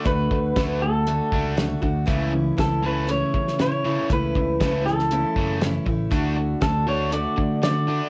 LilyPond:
<<
  \new Staff \with { instrumentName = "Clean electric guitar" } { \time 4/4 \key d \major \tempo 4 = 119 b'4. a'4. r4 | r4 a'8 b'8 cis''4 cis''4 | b'4. a'4. r4 | r4 a'8 cis''8 d''4 d''4 | }
  \new Staff \with { instrumentName = "Steel-string acoustic guitar" } { \time 4/4 \key d \major <d a d' fis'>4 <d a d' fis'>4 <d a d' fis'>4 <d a d' fis'>8 <a d' fis'>8 | <cis e a cis' e'>4 <e a cis' e'>8 <a cis' e'>8 <cis e a cis' e'>4 <e a cis' e'>8 <a cis' e'>8 | <cis e a cis' e'>4 <e a cis' e'>8 <a cis' e'>8 <cis e a cis' e'>4 <e a cis' e'>8 <a cis' e'>8 | <d a d' fis'>4 <d a d' fis'>8 <a d' fis'>8 <d a d' fis'>4 <d a d' fis'>8 <a d' fis'>8 | }
  \new Staff \with { instrumentName = "Overdriven electric guitar" } { \clef bass \time 4/4 \key d \major <d a>8 <d a>8 <d a d'>8 <d a>8 <d a>8 <d a d'>8 <d a>8 <d a>8 | <cis e a>8 <cis e>8 <cis e>8 <cis e a>8 <cis e>8 <cis e>8 <cis e>8 <cis e a>8 | <cis e>8 <cis e>8 <cis e a>8 <cis e>8 <cis e>8 <cis e a>8 <cis e>8 <cis e>8 | <d a d'>8 <d a>8 <d a>8 <d a d'>8 <d a>8 <d a>8 <d a>8 <d a d'>8 | }
  \new Staff \with { instrumentName = "Picked electric bass" } { \clef bass \time 4/4 \key d \major d,8 d,8 d,4. cis,4 d,8 | cis,4 cis,4. cis4. | cis,8 cis,8 cis,4. fis,,4 a,,8 | d,4 d,4. d4. | }
  \new DrumStaff \with { instrumentName = "Drums" } \drummode { \time 4/4 <hh bd>8 bd8 <hh bd sn>4 hh8 bd8 <hh sn>8 bd8 | <hh bd>4 <hh bd sn>4 hh8 bd16 sn16 <hh sn>4 | <hh bd>8 bd8 <hh bd sn>8 sn16 sn16 hh8 bd8 <hh sn>8 bd8 | <hh bd>4 <hh bd sn>4 hh8 bd8 <hh sn>4 | }
>>